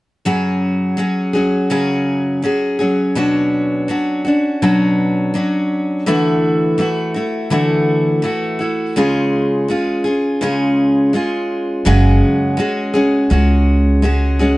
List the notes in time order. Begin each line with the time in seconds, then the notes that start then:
0.25 F#2 C#3 F#3 C#4 F#4 G#4
0.97 F#3 C#4 F#4 G#4
1.33 F#3 C#4 F#4 G#4
1.70 F#2 C#3 F#3 C#4 F#4 G#4
2.42 F#3 C#4 F#4 G#4
2.79 F#3 C#4 F#4 G#4
3.15 B2 F#3 C#4 D4 F#4
3.88 F#3 C#4 D4 F#4
4.25 C#4 D4 F#4
4.62 B2 F#3 C#4 D4 F#4
5.34 F#3 C#4 D4 F#4
6.06 D3 E3 A3 E4 F#4
6.78 E3 A3 E4 F#4
7.14 A3 E4 F#4
7.50 D3 E3 A3 E4 F#4
8.22 E3 A3 E4 F#4
8.59 A3 E4 F#4
8.96 C#3 G#3 C#4 F4 G#4
9.68 G#3 C#4 F4 G#4
10.04 C#4 F4 G#4
10.41 C#3 G#3 C#4 F4 G#4
11.13 G#3 C#4 F4 G#4
11.85 F#1 F#2 C#3 G#3 C#4 F#4 G#4
12.57 G#3 C#4 F#4 G#4
12.94 G#3 C#4 F#4 G#4
13.30 C#2 G#3 C#4 F#4 G#4
14.02 G#3 C#4 F#4 G#4
14.39 G#3 C#4 F#4 G#4